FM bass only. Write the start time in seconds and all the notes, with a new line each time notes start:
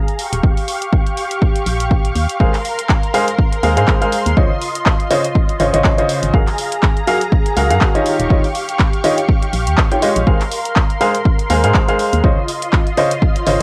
0.33 D#1
0.43 D#1
1.66 A#1
2.16 D#2
2.40 G#1
3.63 D#2
3.77 G#2
4.26 D#2
4.37 C#2
5.60 G#1
5.74 G#1
6.23 G#1
6.34 F#1
7.57 C#2
7.70 F#2
8.20 D#1
8.30 D#1
9.53 A#1
9.67 D#2
10.16 A#1
10.27 G#1
11.50 D#2
11.64 G#2
12.13 D#2
12.24 C#2
13.47 G#1